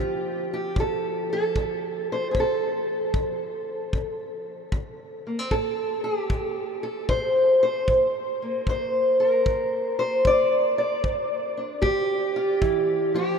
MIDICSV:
0, 0, Header, 1, 3, 480
1, 0, Start_track
1, 0, Key_signature, -1, "minor"
1, 0, Tempo, 790514
1, 1428, Time_signature, 4, 2, 24, 8
1, 8129, End_track
2, 0, Start_track
2, 0, Title_t, "Steel-string acoustic guitar"
2, 0, Program_c, 0, 25
2, 0, Note_on_c, 0, 50, 65
2, 0, Note_on_c, 0, 53, 55
2, 0, Note_on_c, 0, 60, 52
2, 0, Note_on_c, 0, 65, 78
2, 0, Note_on_c, 0, 67, 89
2, 311, Note_off_c, 0, 67, 0
2, 325, Note_on_c, 0, 67, 80
2, 434, Note_off_c, 0, 50, 0
2, 470, Note_on_c, 0, 50, 72
2, 473, Note_off_c, 0, 67, 0
2, 485, Note_on_c, 0, 69, 96
2, 793, Note_off_c, 0, 65, 0
2, 798, Note_off_c, 0, 69, 0
2, 806, Note_on_c, 0, 69, 99
2, 918, Note_off_c, 0, 50, 0
2, 954, Note_on_c, 0, 50, 72
2, 1279, Note_off_c, 0, 69, 0
2, 1289, Note_on_c, 0, 72, 90
2, 1400, Note_off_c, 0, 50, 0
2, 1402, Note_off_c, 0, 72, 0
2, 1404, Note_on_c, 0, 68, 68
2, 1413, Note_off_c, 0, 60, 0
2, 1430, Note_off_c, 0, 68, 0
2, 1435, Note_on_c, 0, 50, 79
2, 1456, Note_on_c, 0, 69, 85
2, 1881, Note_off_c, 0, 50, 0
2, 1917, Note_on_c, 0, 50, 66
2, 2362, Note_off_c, 0, 50, 0
2, 2397, Note_on_c, 0, 50, 67
2, 2843, Note_off_c, 0, 50, 0
2, 2874, Note_on_c, 0, 50, 71
2, 3198, Note_on_c, 0, 58, 43
2, 3272, Note_off_c, 0, 58, 0
2, 3272, Note_on_c, 0, 60, 35
2, 3321, Note_off_c, 0, 50, 0
2, 3340, Note_off_c, 0, 69, 0
2, 3347, Note_on_c, 0, 69, 85
2, 3350, Note_off_c, 0, 60, 0
2, 3354, Note_off_c, 0, 53, 0
2, 3356, Note_on_c, 0, 45, 76
2, 3665, Note_off_c, 0, 69, 0
2, 3667, Note_on_c, 0, 67, 78
2, 3802, Note_off_c, 0, 45, 0
2, 3833, Note_on_c, 0, 45, 69
2, 4145, Note_off_c, 0, 67, 0
2, 4148, Note_on_c, 0, 69, 89
2, 4281, Note_off_c, 0, 45, 0
2, 4303, Note_on_c, 0, 45, 67
2, 4304, Note_off_c, 0, 69, 0
2, 4306, Note_on_c, 0, 72, 105
2, 4624, Note_off_c, 0, 72, 0
2, 4632, Note_on_c, 0, 72, 98
2, 4755, Note_off_c, 0, 45, 0
2, 4789, Note_off_c, 0, 72, 0
2, 4791, Note_on_c, 0, 45, 74
2, 5115, Note_on_c, 0, 58, 44
2, 5239, Note_off_c, 0, 45, 0
2, 5275, Note_on_c, 0, 43, 79
2, 5279, Note_on_c, 0, 72, 86
2, 5584, Note_off_c, 0, 72, 0
2, 5586, Note_on_c, 0, 70, 82
2, 5721, Note_off_c, 0, 43, 0
2, 5756, Note_on_c, 0, 43, 68
2, 6063, Note_off_c, 0, 70, 0
2, 6066, Note_on_c, 0, 72, 96
2, 6200, Note_off_c, 0, 43, 0
2, 6224, Note_off_c, 0, 72, 0
2, 6224, Note_on_c, 0, 43, 71
2, 6236, Note_on_c, 0, 74, 113
2, 6540, Note_off_c, 0, 74, 0
2, 6547, Note_on_c, 0, 74, 88
2, 6673, Note_off_c, 0, 43, 0
2, 6700, Note_on_c, 0, 43, 75
2, 7026, Note_off_c, 0, 58, 0
2, 7028, Note_on_c, 0, 62, 47
2, 7150, Note_off_c, 0, 43, 0
2, 7165, Note_off_c, 0, 62, 0
2, 7172, Note_off_c, 0, 74, 0
2, 7175, Note_on_c, 0, 67, 95
2, 7178, Note_on_c, 0, 50, 80
2, 7505, Note_on_c, 0, 65, 88
2, 7628, Note_off_c, 0, 50, 0
2, 7659, Note_on_c, 0, 52, 65
2, 7980, Note_on_c, 0, 53, 67
2, 7981, Note_off_c, 0, 67, 0
2, 7984, Note_off_c, 0, 52, 0
2, 7988, Note_on_c, 0, 67, 96
2, 8129, Note_off_c, 0, 53, 0
2, 8129, Note_off_c, 0, 65, 0
2, 8129, Note_off_c, 0, 67, 0
2, 8129, End_track
3, 0, Start_track
3, 0, Title_t, "Drums"
3, 463, Note_on_c, 9, 36, 68
3, 524, Note_off_c, 9, 36, 0
3, 945, Note_on_c, 9, 36, 63
3, 1006, Note_off_c, 9, 36, 0
3, 1425, Note_on_c, 9, 36, 59
3, 1486, Note_off_c, 9, 36, 0
3, 1906, Note_on_c, 9, 36, 67
3, 1967, Note_off_c, 9, 36, 0
3, 2387, Note_on_c, 9, 36, 63
3, 2448, Note_off_c, 9, 36, 0
3, 2867, Note_on_c, 9, 36, 66
3, 2928, Note_off_c, 9, 36, 0
3, 3346, Note_on_c, 9, 36, 60
3, 3407, Note_off_c, 9, 36, 0
3, 3825, Note_on_c, 9, 36, 71
3, 3885, Note_off_c, 9, 36, 0
3, 4304, Note_on_c, 9, 36, 67
3, 4365, Note_off_c, 9, 36, 0
3, 4784, Note_on_c, 9, 36, 65
3, 4845, Note_off_c, 9, 36, 0
3, 5263, Note_on_c, 9, 36, 66
3, 5324, Note_off_c, 9, 36, 0
3, 5744, Note_on_c, 9, 36, 68
3, 5805, Note_off_c, 9, 36, 0
3, 6224, Note_on_c, 9, 36, 68
3, 6284, Note_off_c, 9, 36, 0
3, 6703, Note_on_c, 9, 36, 62
3, 6764, Note_off_c, 9, 36, 0
3, 7180, Note_on_c, 9, 36, 65
3, 7241, Note_off_c, 9, 36, 0
3, 7661, Note_on_c, 9, 36, 68
3, 7722, Note_off_c, 9, 36, 0
3, 8129, End_track
0, 0, End_of_file